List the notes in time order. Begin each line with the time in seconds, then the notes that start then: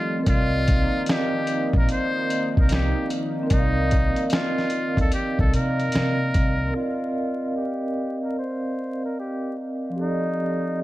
Already playing: D#3 F3 G3 A3 C4 F4 G4 A4 D5 D#5
0.19 C4 A#4
0.26 C2 D#3 F3 A#3 D#4 F4 D5, kick, closed hi-hat
0.31 D#5 F5
0.68 kick, closed hi-hat
1.06 snare, closed hi-hat
1.11 G4
1.47 closed hi-hat
1.73 A#1 A#4, kick
1.89 C5, closed hi-hat
2.30 closed hi-hat
2.57 C2 A#4, kick
2.69 snare, closed hi-hat
2.74 G4
3.10 closed hi-hat
3.43 C4 A#4
3.50 C2 D#4 D5, kick, closed hi-hat
3.54 D#5 F5
3.91 kick, closed hi-hat
4.16 closed hi-hat
4.30 snare, closed hi-hat
4.34 F4
4.58 snare
4.70 closed hi-hat
4.97 D2 A4, kick, closed hi-hat
5.12 G4, closed hi-hat
5.39 C2 A4, kick
5.49 C4 A#4
5.53 C3 A#4 D5 D#5 F5, closed hi-hat
5.80 closed hi-hat
5.92 C3, snare, closed hi-hat
6.34 C2, kick, closed hi-hat
6.67 C4 A#4
6.75 F4 D5 D#5
6.82 F5
7.56 G4
8.24 A#4
8.39 C5
9.05 A#4
9.19 G4
9.90 F3 C4
9.96 G4 A4
10.01 D#4 D5 D#5